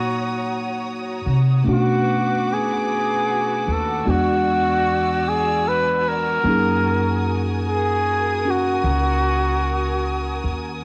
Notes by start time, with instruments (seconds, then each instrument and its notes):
Already playing: upright bass A#2, tine electric piano F#3 A#3 D#4 F#4 C#5 F5, trumpet F#4, string section F#4 C#5 A#5 D#6
1.26 upright bass C3
1.64 upright bass B2, tine electric piano A3 C#4 D4, string section B4 F#5 D6
1.69 tine electric piano F#4, trumpet F#4
2.54 trumpet G#4
3.67 upright bass D#2
3.73 trumpet A4
4.05 upright bass E2, tine electric piano G#3 B3 D4 F#4, string section D5 G#5 E6
4.10 trumpet F#4
5.28 trumpet G#4
5.68 trumpet B4
6.08 trumpet A#4
6.44 upright bass F#2, tine electric piano A#3 C#4 D#4, string section A#4 D#6
6.49 tine electric piano G#4
7.68 trumpet G#4
8.45 tine electric piano C#4 F#4
8.50 trumpet F#4
8.84 upright bass C#2
10.44 upright bass D#2